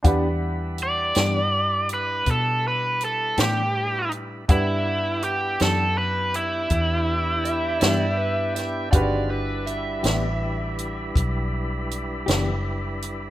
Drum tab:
HH |x-xx-xx-xx-x|x-xx-xx-xx-x|x-xx-xx-xx-x|
SD |---o-----o--|---o-----o-o|---o-----o--|
BD |o-----o-----|o-----o-----|o-----o-----|